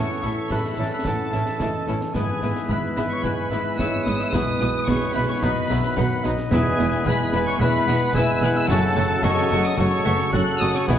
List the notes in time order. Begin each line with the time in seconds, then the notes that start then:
Already playing: E3 A3 C#4 E4 A4 C#5 F#5 C#6
0.00 A2
0.16 C#4
0.22 A1 A2 E3 C#4 E4 A4 E5, snare
0.34 E4
0.50 A1 A2 E3 C#4 E4 A4 B4 B5, concert bass drum, snare
0.70 E4
0.78 A1 A2 E3 C#4 E4 A4 A5
0.88 C#4 B5
0.93 B4
1.05 A1 A2 E3 C#4 E4 A4 F#5 A5, concert bass drum, snare
1.25 C#4
1.32 A1 A2 E3 C#4 E4 A4 E5, snare
1.44 E4, snare
1.60 A1 A2 E3 C#4 E4 A4 D#5, concert bass drum, snare
1.80 E4
1.87 A1 A2 E3 C#4 E4 A4 C#5, snare
1.99 C#4, snare
2.14 G#1 G#2 E3 G#3 B3 E4 G#4 B4 G#5, concert bass drum, snare
2.35 B3
2.42 G#1 G#2 G#3 B3 E4 B4 E5, snare
2.53 E4, snare
2.69 G#1 G#2 G#3 B3 E4 B4 B5, concert bass drum
2.89 E4
2.96 G#1 G#2 G#3 B3 E4 B4 B5, snare
3.07 B3 C#6
3.13 C#5
3.23 G#1 G#2 G#3 B3 E4 B4 G#5 B5, concert bass drum
3.43 G#3
3.51 G#1 G#2 G#3 B3 E4 B4 E5, snare
3.62 E4
3.78 G#1 G#2 G#3 B3 E4 B4 C#5 E5 E6, concert bass drum, snare
3.98 E4
4.05 G#1 G#2 G#3 B3 E4 B4 D#5 D#6, snare
4.16 B3 E6, snare
4.23 E5
4.31 B1 B2 G#3 B3 E4 B4 D#6, concert bass drum, snare
4.35 D#5
4.52 B3
4.60 B1 B2 G#3 B3 E4 B4, snare
4.71 E4
4.86 B1 B2 G#3 B3 E4 G#4 B4 C#5 C#6, concert bass drum, snare
5.07 E4
5.14 B1 B2 G#3 B3 E4 B4 B5
5.25 B3 C#5 C#6
5.41 B1 B2 D#3 F#3 B3 D#4 F#4 B4 D#5 B5, concert bass drum, snare
5.62 B3
5.70 B1 B2 F#3 B3 D#4 B4 E5, snare
5.79 D#4
5.83 snare
5.96 B1 B2 F#3 B3 D#4 F#4 B4 F#5, concert bass drum, snare
6.16 D#4
6.24 B1 B2 F#3 B3 D#4 B4 D#5, snare
6.35 B3, snare
6.51 E1 E2 E3 G#3 B3 E4 G#4 B4 E5 G#5, concert bass drum, snare, crash
6.70 B3
6.79 E1 E2 G#3 B3 E4 B4, snare
6.88 E4, snare
7.05 E1 E2 E3 G#3 B3 E4 G#4 B4 G#5 B5, concert bass drum
7.25 E4
7.32 E1 E2 G#3 B3 E4 B4 B5, snare
7.43 B3 C#6
7.48 C#5
7.59 E1 E2 B2 E3 G#3 B3 E4 B4 E5 B5, concert bass drum
7.79 B3
7.87 E1 E2 G#3 B3 E4 B4 F#5, snare
7.97 E4
8.14 E1 E2 E3 G#3 B3 E4 G#4 B4 E5 G#5 E6, concert bass drum, snare
8.34 E4
8.42 E1 E2 G#3 B3 E4 B4 F#5 F#6, snare
8.52 B3, snare
8.57 E5 E6
8.68 F#1 F#2 C#3 F#3 A3 C#4 F#4 A4 F#5 A5, concert bass drum, snare
8.88 A3
8.95 F#1 F#2 F#3 A3 C#4 F#4, snare
9.06 C#4
9.22 F#1 F#2 C#3 F#3 A3 C#4 F#4 A4 C#5 D#5 C#6, concert bass drum, snare
9.42 C#4
9.51 F#1 F#2 F#3 A3 C#4 F#4 C#5 C#6
9.61 A3 D#6
9.66 D#5
9.77 F#1 F#2 C#3 F#3 A3 C#4 F#4 A4 C#5 C#6, concert bass drum, snare
9.98 A3
10.05 F#1 F#2 F#3 A3 C#4 F#4 B4, snare
10.16 C#4, snare
10.32 F#1 F#2 C#3 F#3 A3 C#4 F#4 A4 F#5 F#6, concert bass drum, snare
10.53 C#4
10.60 F#1 F#2 F#3 A3 C#4 F#4 D#5 D#6, snare
10.72 A3 C#5 C#6, snare
10.87 B1 B2 E3 G#3 B3 E4 G#4 B4 G#5, concert bass drum, snare